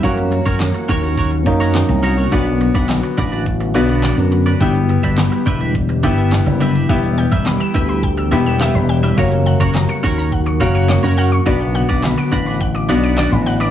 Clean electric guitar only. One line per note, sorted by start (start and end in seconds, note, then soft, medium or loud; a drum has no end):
0.03 0.21 C#4 medium
0.03 0.17 F#4 medium
0.03 0.17 A#4 medium
0.03 0.16 C#5 loud
0.18 muted clean electric guitar stroke medium
0.32 muted clean electric guitar stroke soft
0.46 0.59 C#4 medium
0.46 0.60 F#4 medium
0.46 0.60 A#4 medium
0.46 0.60 C#5 medium
0.60 muted clean electric guitar stroke soft
0.75 muted clean electric guitar stroke soft
0.89 1.04 C#4 medium
0.89 1.03 F#4 loud
0.89 1.03 A#4 loud
0.89 1.02 C#5 loud
1.03 1.16 C#4 medium
1.03 1.17 F#4 medium
1.03 1.17 A#4 medium
1.03 1.17 C#5 medium
1.17 1.35 C#4 medium
1.17 1.32 F#4 medium
1.17 1.31 A#4 medium
1.17 1.31 C#5 medium
1.32 muted clean electric guitar stroke soft
1.46 muted clean electric guitar stroke soft
1.60 1.74 C#4 soft
1.60 1.74 F#4 medium
1.60 1.74 A#4 medium
1.60 1.74 C#5 medium
1.75 muted clean electric guitar stroke soft
1.89 muted clean electric guitar stroke soft
2.03 2.18 C#4 medium
2.03 2.17 F#4 medium
2.03 2.17 A#4 medium
2.03 2.16 C#5 medium
2.17 2.31 C#4 soft
2.17 2.31 F#4 medium
2.17 2.32 A#4 medium
2.17 2.31 C#5 medium
2.32 2.50 D4 medium
2.32 2.46 F#4 loud
2.32 2.46 B4 loud
2.32 2.45 D5 loud
2.46 muted clean electric guitar stroke medium
2.60 muted clean electric guitar stroke soft
2.75 2.88 D4 medium
2.75 2.88 F#4 medium
2.75 2.89 B4 medium
2.75 2.89 D5 medium
2.89 muted clean electric guitar stroke soft
3.03 muted clean electric guitar stroke medium
3.17 3.32 D4 medium
3.17 3.32 F#4 medium
3.17 3.31 B4 medium
3.17 3.31 D5 loud
3.32 3.45 D4 medium
3.32 3.45 F#4 medium
3.32 3.46 B4 medium
3.32 3.46 D5 medium
3.46 muted clean electric guitar stroke soft
3.61 muted clean electric guitar stroke soft
3.75 3.89 D4 medium
3.75 3.89 F#4 medium
3.75 3.88 B4 medium
3.75 3.88 D5 loud
3.89 4.02 D4 medium
3.89 4.03 F#4 medium
3.89 4.03 B4 medium
3.89 4.03 D5 medium
4.03 4.21 D4 medium
4.03 4.18 F#4 medium
4.03 4.17 B4 medium
4.03 4.17 D5 medium
4.18 muted clean electric guitar stroke soft
4.32 muted clean electric guitar stroke soft
4.46 4.59 D4 medium
4.46 4.61 F#4 medium
4.46 4.60 B4 medium
4.46 4.60 D5 medium
4.60 4.78 D4 medium
4.60 4.75 G4 loud
4.60 4.74 B4 loud
4.60 4.74 E5 loud
4.75 muted clean electric guitar stroke soft
4.89 muted clean electric guitar stroke soft
5.03 5.16 D4 medium
5.03 5.17 G4 medium
5.03 5.17 B4 medium
5.03 5.17 E5 medium
5.18 muted clean electric guitar stroke soft
5.32 muted clean electric guitar stroke soft
5.46 5.61 D4 medium
5.46 5.60 G4 medium
5.46 5.60 B4 medium
5.46 5.59 E5 medium
5.60 5.73 D4 medium
5.60 5.74 G4 medium
5.60 5.74 B4 medium
5.60 5.74 E5 medium
5.75 muted clean electric guitar stroke soft
5.89 muted clean electric guitar stroke soft
6.03 6.18 D4 medium
6.03 6.17 G4 medium
6.03 6.17 B4 medium
6.03 6.16 E5 medium
6.17 6.31 D4 soft
6.17 6.31 G4 medium
6.17 6.31 B4 medium
6.17 6.31 E5 medium
6.32 muted clean electric guitar stroke soft
6.46 muted clean electric guitar stroke soft
6.60 6.75 D4 medium
6.60 6.75 G4 medium
6.60 6.74 B4 medium
6.60 6.73 E5 loud
6.75 6.89 D4 soft
6.75 6.88 G4 medium
6.75 6.89 B4 medium
6.75 6.89 E5 medium
6.89 7.07 E4 medium
6.89 7.03 G4 medium
6.89 7.03 B4 loud
6.89 7.02 E5 loud
7.03 muted clean electric guitar stroke soft
7.18 muted clean electric guitar stroke soft
7.32 7.45 E4 medium
7.32 7.45 G4 medium
7.32 7.46 B4 medium
7.32 7.46 E5 medium
7.46 muted clean electric guitar stroke soft
7.60 muted clean electric guitar stroke soft
7.74 7.89 E4 medium
7.74 7.89 G4 medium
7.74 7.88 B4 loud
7.74 7.88 E5 loud
7.89 8.02 E4 soft
7.89 8.02 G4 medium
7.89 8.03 B4 medium
7.89 8.03 E5 medium
8.03 muted clean electric guitar stroke soft
8.17 muted clean electric guitar stroke soft
8.32 8.46 E4 medium
8.32 8.46 G4 medium
8.32 8.45 B4 medium
8.32 8.45 E5 medium
8.46 8.59 E4 medium
8.46 8.60 G4 medium
8.46 8.60 B4 medium
8.46 8.60 E5 medium
8.60 8.78 E4 medium
8.60 8.75 G4 medium
8.60 8.74 B4 medium
8.60 8.74 E5 medium
8.75 muted clean electric guitar stroke medium
8.89 muted clean electric guitar stroke soft
9.03 9.17 E4 medium
9.03 9.18 G4 medium
9.03 9.17 B4 medium
9.03 9.17 E5 medium
9.17 9.35 C#4 medium
9.17 9.32 F#4 medium
9.17 9.31 A#4 medium
9.17 9.31 C#5 loud
9.32 muted clean electric guitar stroke medium
9.46 muted clean electric guitar stroke soft
9.60 9.73 C#4 medium
9.60 9.74 F#4 medium
9.60 9.74 A#4 medium
9.60 9.74 C#5 medium
9.75 muted clean electric guitar stroke soft
9.89 muted clean electric guitar stroke medium
10.03 10.18 C#4 medium
10.03 10.17 F#4 medium
10.03 10.17 A#4 loud
10.03 10.16 C#5 loud
10.17 10.31 C#4 soft
10.17 10.31 F#4 medium
10.17 10.31 A#4 medium
10.17 10.31 C#5 medium
10.32 muted clean electric guitar stroke soft
10.46 muted clean electric guitar stroke soft
10.60 10.75 C#4 medium
10.60 10.74 F#4 medium
10.60 10.74 A#4 medium
10.60 10.73 C#5 medium
10.74 10.88 C#4 medium
10.74 10.88 F#4 medium
10.74 10.89 A#4 medium
10.74 10.89 C#5 medium
10.89 muted clean electric guitar stroke soft
11.03 11.16 C#4 medium
11.03 11.17 F#4 medium
11.03 11.17 A#4 medium
11.03 11.17 C#5 medium
11.17 11.35 C#4 medium
11.17 11.32 F#4 medium
11.17 11.31 A#4 medium
11.17 11.31 C#5 medium
11.32 muted clean electric guitar stroke medium
11.46 11.64 D4 medium
11.46 11.60 F#4 medium
11.46 11.60 B4 medium
11.46 11.59 D5 medium
11.60 muted clean electric guitar stroke soft
11.75 muted clean electric guitar stroke medium
11.89 12.02 D4 medium
11.89 12.02 F#4 medium
11.89 12.03 B4 medium
11.89 12.03 D5 medium
12.03 muted clean electric guitar stroke soft
12.18 muted clean electric guitar stroke medium
12.32 12.46 D4 medium
12.32 12.46 F#4 medium
12.32 12.45 B4 medium
12.32 12.45 D5 medium
12.46 12.59 D4 medium
12.46 12.60 F#4 medium
12.46 12.60 B4 medium
12.46 12.60 D5 medium
12.60 muted clean electric guitar stroke soft
12.75 muted clean electric guitar stroke soft
12.89 13.04 D4 medium
12.89 13.03 F#4 loud
12.89 13.03 B4 loud
12.89 13.02 D5 loud
13.03 13.16 D4 medium
13.03 13.17 F#4 medium
13.03 13.17 B4 medium
13.03 13.17 D5 medium
13.17 13.35 D4 medium
13.17 13.32 F#4 medium
13.17 13.31 B4 medium
13.17 13.31 D5 medium
13.32 muted clean electric guitar stroke soft
13.46 muted clean electric guitar stroke soft
13.60 13.71 D4 medium
13.60 13.71 F#4 medium
13.60 13.71 B4 medium
13.60 13.71 D5 medium